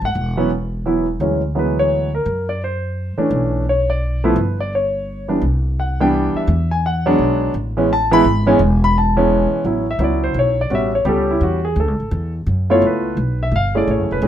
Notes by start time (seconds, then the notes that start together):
0.02 G#1 F#5
0.15 E1
0.37 E3 F#3 B3 C#4
0.86 E3 F#3 B3 E4
1.20 D2 E3 F#3 G#3 C#4
1.55 E3 F#3 G#3 B3 B4
1.79 C#5
2.15 A#4
2.25 F#2
2.49 D5
2.64 C5
3.18 E3 A3 C#4 D4, muted upright bass stroke
3.31 B1
3.69 C#5
3.90 D5
4.24 F3 A3 B3 E4 B4
4.36 G1
4.60 D5
4.75 C#5
5.28 E3 G3 B3 D4
5.42 C2
5.80 F#5
6.00 E3 G3 B3 D4 G5
6.34 E5, muted upright bass stroke
6.47 E2
6.71 G#5
6.86 F#5
7.06 F#3 G#3 B3 D4
7.18 B1
7.54 A1
7.77 E3 G#3 B3 C#4
7.93 A5
8.11 E3 G#3 B3 E4 B5
8.24 G#1
8.46 E3 G#3 B3 C#4 G#5
8.59 E1
8.84 B5
8.98 A5
9.17 E3 G#3 B3 C#4
9.52 muted upright bass stroke
9.64 A1 F#3 B3 C#4 E4
9.91 E5
9.99 C#2 F#3 B3 C#4 E4
10.04 D5
10.24 C5
10.34 B1
10.39 C#5
10.61 D5
10.70 A1 G3 B3 C#4 F#4
10.75 E5
10.95 C#5
11.05 C#2 G3 B3 C#4 G4 A4
11.31 E4
11.41 E2 F#4
11.65 G#4
11.76 D2
11.80 A4
11.88 C#2
12.00 A1
12.11 E2
12.46 F#2
12.70 A3 B3 E4 F4 C#5
12.82 C#2
12.87 B4
13.17 B1
13.43 E5
13.52 G1
13.56 F5
13.75 A3 C#4 E4 G#4 D5
13.87 A1 C#5
13.99 F#1
14.11 E1 B4
14.22 B1 A3 C#4 E4 G#4